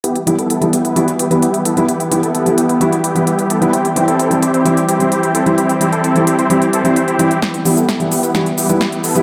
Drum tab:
HH |xxxxxxxxxxxxxxxx|xxxxxxxxxxxxxxxx|xxxxxxxxxxxxxxxx|xxxxxxxxxxxxxxxx|
SH |----------------|----------------|----------------|----------------|
SD |----------------|----------------|----------------|----------------|
BD |----------------|----------------|----------------|----------------|

HH |xxoxxxoxxxoxxxox|
SH |x-xxx-xxx-xxx-xx|
SD |o---o---o---o---|
BD |o---o---o---o---|